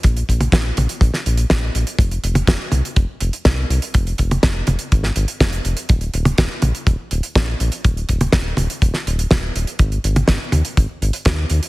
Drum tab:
HH |xxxxx-xxx-xxx-xx|xxxxx-xxx-xxx-xx|xxxxx-xxx-xxxxxx|xxxxx-xxx-xxx-xx|
SD |----o----o--o---|----o-------o---|----o----o--o---|----o-------o---|
T1 |---o--o---------|---o--o---------|---o--o---------|---o--o---------|
BD |o-o-o---o---o---|o---o---o---o---|o-o-o---o---o---|o---o---o---o---|

HH |xxxxx-xxx-xxx-xx|xxxxx-xxx-xxx-xx|
SD |----o----o--o---|----o-------o---|
T1 |---o--o---------|---o--o---------|
BD |o-o-o---o---o---|o---o---o---o---|